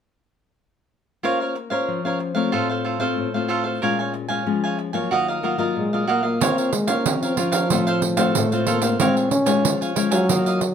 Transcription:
1.23 nylon-string guitar A#3 C#4 F4 C5, cavaquinho F4 A#4 C#5 F5
1.40 cavaquinho A#4 C#5 F5
1.55 muted cavaquinho stroke
1.70 nylon-string guitar C#4 F4 C5, cavaquinho A#4 C#5 F5
1.88 nylon-string guitar F3
2.05 nylon-string guitar C#4 F4 C5, cavaquinho A#4 C#5 F5
2.19 muted cavaquinho stroke
2.35 nylon-string guitar A3 C4 F4, cavaquinho A#4 C#5 F5
2.52 nylon-string guitar A2, cavaquinho F4 A4 C5 F5
2.69 cavaquinho A4 C5 F5
2.85 cavaquinho F4 A4 C5 F5
2.99 nylon-string guitar A3 C4 F4, cavaquinho A4 C5 F5
3.18 nylon-string guitar A2
3.34 nylon-string guitar A3 C4 F4, cavaquinho A4 C5 F5
3.48 cavaquinho F4 A4 C5 F5
3.64 cavaquinho A4 C5 F5
3.82 nylon-string guitar A#2 G#3 C#4 F4, cavaquinho A#4 C#5 F5 G#5
3.99 cavaquinho C#5 F5 G#5
4.13 muted cavaquinho stroke
4.28 nylon-string guitar G#3 C#4 F4, cavaquinho C#5 F5 G#5
4.46 nylon-string guitar F3 G#3 C#4 F4
4.64 cavaquinho C#5 F5 G#5
4.79 muted cavaquinho stroke
4.93 nylon-string guitar F#3 A#3 F4, cavaquinho C#5 F5 G#5
5.11 nylon-string guitar D#3, cavaquinho F#4 A#4 D#5 F5
5.28 cavaquinho A#4 D#5 F5
5.43 nylon-string guitar F#3 A#3 F4, cavaquinho F#4 A#4 D#5 F5
5.58 nylon-string guitar F#3 A#3 F4, cavaquinho A#4 D#5 F5
5.76 nylon-string guitar A#2, trombone G#3
5.93 nylon-string guitar F#3 A#3 F4, cavaquinho A#4 D#5 F5
6.07 trombone A#3, cavaquinho F#4 A#4 D#5 F5
6.23 trombone A#3, cavaquinho A#4 D#5 F5
6.41 nylon-string guitar A#3 F4 C5, trombone C4, cavaquinho F4 A#4 C#5 F5, pandeiro
6.58 cavaquinho A#4 C#5 F5, pandeiro
6.72 trombone G#3, muted cavaquinho stroke, pandeiro
6.87 trombone A#3, nylon-string guitar C#4 F4 C5, cavaquinho A#4 C#5 F5, pandeiro
7.06 nylon-string guitar F3, trombone C4, pandeiro
7.22 cavaquinho A#4 C#5 F5, pandeiro
7.37 trombone F3, nylon-string guitar C#4 F4 C5, cavaquinho F4 A#4 C#5 F5, pandeiro
7.52 cavaquinho A#4 C#5 F5, pandeiro
7.70 nylon-string guitar A2 A3 C4 F4, cavaquinho F4 A4 C5 F5, pandeiro
7.87 cavaquinho A4 C5 F5, pandeiro
8.02 muted cavaquinho stroke, pandeiro
8.17 nylon-string guitar A3 C4 F4, cavaquinho A4 C5 F5, pandeiro
8.35 nylon-string guitar A2, trombone A3, pandeiro
8.52 nylon-string guitar A3 C4 F4, cavaquinho A4 C5 F5, pandeiro
8.67 trombone A#3, cavaquinho F4 A4 C5 F5, pandeiro
8.82 trombone A#3, cavaquinho A4 C5 F5, pandeiro
9.00 nylon-string guitar A#2 G#3 F4, trombone C4, cavaquinho A#4 C#5 F5 G#5, pandeiro
9.16 cavaquinho C#5 G#5, pandeiro
9.31 trombone C#4, muted cavaquinho stroke, pandeiro
9.46 nylon-string guitar G#3 C#4 F4, cavaquinho C#5 F5 G#5, pandeiro
9.64 nylon-string guitar F3, pandeiro
9.81 cavaquinho C#5 F5 G#5, pandeiro
9.96 nylon-string guitar G#3 C#4 F4, cavaquinho A#4 C#5 F5 G#5, pandeiro
10.11 trombone F#3, cavaquinho C#5 F5 G#5, pandeiro
10.29 nylon-string guitar D#3 F#3 A#3 F4, cavaquinho F#4 A#4 D#5 F5, pandeiro
10.46 cavaquinho A#4 D#5 F5, pandeiro
10.61 muted cavaquinho stroke, pandeiro

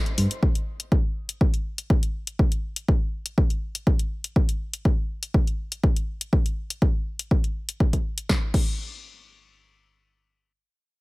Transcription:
Already playing: violin section C5 C6
0.06 closed hi-hat
0.18 fingered electric bass G2, open hi-hat
0.31 closed hi-hat
0.43 kick
0.55 closed hi-hat
0.80 closed hi-hat
0.92 kick
1.29 closed hi-hat
1.41 kick
1.54 closed hi-hat
1.78 closed hi-hat
1.90 kick
2.03 closed hi-hat
2.27 closed hi-hat
2.39 kick
2.52 closed hi-hat
2.76 closed hi-hat
2.88 kick
3.26 closed hi-hat
3.38 kick
3.50 closed hi-hat
3.75 closed hi-hat
3.87 kick
3.99 closed hi-hat
4.24 closed hi-hat
4.36 kick
4.49 closed hi-hat
4.74 closed hi-hat
4.85 kick
5.23 closed hi-hat
5.34 kick
5.47 closed hi-hat
5.72 closed hi-hat
5.84 kick
5.96 closed hi-hat
6.21 closed hi-hat
6.33 kick
6.46 closed hi-hat
6.70 closed hi-hat
6.82 kick
7.19 closed hi-hat
7.31 kick
7.44 closed hi-hat
7.69 closed hi-hat
7.80 kick
7.93 kick, closed hi-hat
8.18 closed hi-hat
8.29 kick, snare
8.54 kick, crash

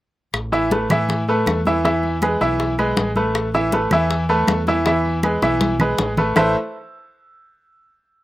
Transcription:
0.34 fingered electric bass A1, high bongo, high conga, claves
0.52 grand piano E3 E4 E5, high bongo, high conga
0.71 grand piano A3 A4 B4, high bongo, high conga
0.90 fingered electric bass A2, grand piano E3 E4 E5, high bongo, high conga, low conga, claves
1.09 high bongo, high conga, low conga
1.28 grand piano A3 A4 B4, high conga
1.46 fingered electric bass E2, high bongo, low bongo, high conga, claves
1.65 grand piano E3 E4 E5, high bongo, high conga
1.84 grand piano E3 E4 E5, high bongo, high conga
2.03 high conga
2.22 grand piano G#3 G#4 B4, high bongo, high conga, claves
2.41 fingered electric bass B1, grand piano E3 E4 E5, high bongo, high conga
2.59 high bongo, high conga
2.78 grand piano G#3 G#4 B4, high bongo, high conga, claves
2.97 fingered electric bass A1, high bongo, low bongo, high conga
3.16 grand piano A3 A4 B4, high bongo, high conga
3.35 high bongo, claves
3.54 grand piano E3 E4 E5, high bongo, high conga
3.72 grand piano A3 A4 B4, high bongo, high conga
3.91 fingered electric bass E2, grand piano E3 E4 E5, high bongo, high conga, low conga, claves
4.10 high bongo, high conga
4.29 grand piano A3 A4 B4, high conga
4.47 fingered electric bass E2, high bongo, low bongo, high conga, claves
4.67 grand piano E3 E4 E5, high bongo, high conga
4.86 grand piano E3 E4 E5, high bongo, high conga
5.05 high conga
5.23 grand piano G#3 G#4 B4, high bongo, high conga, claves
5.42 fingered electric bass B1, grand piano E3 E4 E5, high bongo, high conga
5.61 high bongo, high conga
5.80 grand piano G#3 G#4 B4, high bongo, low conga, claves
5.98 fingered electric bass A1, high bongo, low bongo, low conga
6.17 grand piano A3 A4 B4, high bongo, low conga
6.36 fingered electric bass A1, grand piano A3 E4 A4 B4 C5 E5, low bongo, low conga, claves

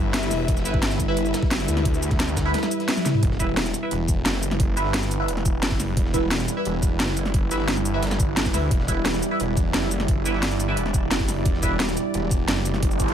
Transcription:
Already playing: detuned saw bass G1, ambient pad G3 E4 B4, string section E4 B4 E5
0.14 snare, closed hi-hat
0.23 closed hi-hat, shaker
0.31 detuned saw bass E1, snare, closed hi-hat, open hi-hat, shaker
0.48 detuned saw bass E1, ambient pad E5, kick, closed hi-hat
0.57 snare, shaker
0.65 detuned saw bass G1, synth stab E4 B4 E5, closed hi-hat, shaker
0.74 kick
0.83 snare, closed hi-hat
0.91 snare, shaker
1.00 detuned saw bass G1, kick, closed hi-hat, shaker
1.08 synth stab E4 B4 E5
1.17 closed hi-hat
1.26 shaker
1.34 snare, closed hi-hat, shaker
1.43 kick, snare
1.51 detuned saw bass F#1, snare, closed hi-hat
1.60 shaker
1.68 detuned saw bass D2, closed hi-hat, shaker
1.77 snare
1.85 kick, closed hi-hat
1.94 shaker
2.03 closed hi-hat, shaker
2.11 kick, snare, closed hi-hat
2.20 snare, closed hi-hat
2.28 snare, shaker
2.37 kick, snare, closed hi-hat, shaker
2.45 synth stab E4 B4 E5, snare
2.54 snare, closed hi-hat
2.58 snare, closed hi-hat
2.63 snare, closed hi-hat, shaker
2.71 closed hi-hat, shaker
2.80 snare, closed hi-hat
2.88 snare, closed hi-hat
2.97 snare, high tom, shaker
3.06 snare, closed hi-hat, mid tom, shaker
3.14 mid tom
3.23 detuned saw bass E1, ambient pad G3 E4 B4, kick, closed hi-hat
3.31 snare
3.40 synth stab E4 B4 E5, kick, closed hi-hat, shaker
3.57 snare, closed hi-hat
3.66 snare, shaker
3.74 closed hi-hat, shaker
3.83 synth stab E4 B4 E5
3.91 detuned saw bass E1, closed hi-hat
4.08 kick, closed hi-hat, shaker
4.26 detuned saw bass F#1, snare, closed hi-hat
4.43 closed hi-hat, shaker
4.51 snare
4.60 kick, closed hi-hat
4.77 detuned saw bass G1, synth stab E4 B4 E5, closed hi-hat, shaker
4.85 snare
4.94 snare, closed hi-hat
5.03 shaker
5.11 closed hi-hat, shaker
5.20 synth stab E4 B4 E5
5.28 detuned saw bass E1, closed hi-hat
5.37 snare
5.45 kick, closed hi-hat, shaker
5.63 detuned saw bass F#1, snare, closed hi-hat
5.71 kick, closed hi-hat
5.80 snare, closed hi-hat, open hi-hat, shaker
5.97 detuned saw bass E1, kick, closed hi-hat
6.06 snare
6.14 synth stab E4 B4 E5, kick, closed hi-hat, shaker
6.31 snare, closed hi-hat
6.40 snare, shaker
6.48 closed hi-hat, shaker
6.57 synth stab E4 B4 E5
6.65 detuned saw bass E1, closed hi-hat
6.83 kick, closed hi-hat, shaker
7.00 detuned saw bass F#1, snare, closed hi-hat
7.17 closed hi-hat, shaker
7.25 snare
7.34 kick, closed hi-hat
7.51 detuned saw bass G1, synth stab E4 B4 E5, closed hi-hat, shaker
7.60 snare
7.68 snare, closed hi-hat
7.77 snare, shaker
7.85 closed hi-hat, shaker
7.94 synth stab E4 B4 E5
8.03 detuned saw bass G1, snare, closed hi-hat
8.07 snare, closed hi-hat
8.11 snare, closed hi-hat, shaker
8.20 kick, closed hi-hat, shaker
8.37 snare, closed hi-hat
8.45 kick, closed hi-hat, shaker
8.54 detuned saw bass D2, synth stab E4 B4 E5, snare, closed hi-hat, open hi-hat, shaker
8.71 detuned saw bass E1, ambient pad D5, kick, closed hi-hat
8.80 snare
8.88 synth stab E4 B4 E5, kick, closed hi-hat, shaker
9.05 snare, closed hi-hat
9.14 snare, shaker
9.23 closed hi-hat, shaker
9.31 synth stab E4 B4 E5
9.40 detuned saw bass E1, closed hi-hat
9.57 kick, closed hi-hat, shaker
9.74 detuned saw bass F#1, snare, closed hi-hat
9.91 closed hi-hat, shaker
10.00 snare
10.08 kick, closed hi-hat
10.25 detuned saw bass G1, synth stab E4 B4 E5, closed hi-hat, shaker
10.34 snare
10.43 snare, closed hi-hat
10.51 shaker
10.60 closed hi-hat, shaker
10.68 synth stab E4 B4 E5
10.77 detuned saw bass E1, closed hi-hat
10.86 snare
10.94 kick, closed hi-hat, shaker
11.11 detuned saw bass F#1, snare, closed hi-hat
11.20 kick, closed hi-hat
11.28 snare, closed hi-hat, open hi-hat, shaker
11.45 detuned saw bass E1, kick, closed hi-hat
11.54 snare
11.63 synth stab E4 B4 E5, kick, closed hi-hat, shaker
11.80 snare, closed hi-hat
11.88 snare, shaker
11.97 closed hi-hat, shaker
12.14 detuned saw bass E1, closed hi-hat
12.31 kick, closed hi-hat, shaker
12.48 detuned saw bass F#1, snare, closed hi-hat
12.65 closed hi-hat, shaker
12.74 snare
12.83 kick, closed hi-hat, noise sweep
12.91 shaker
13.00 detuned saw bass G1, kick, closed hi-hat, shaker
13.08 snare, closed hi-hat

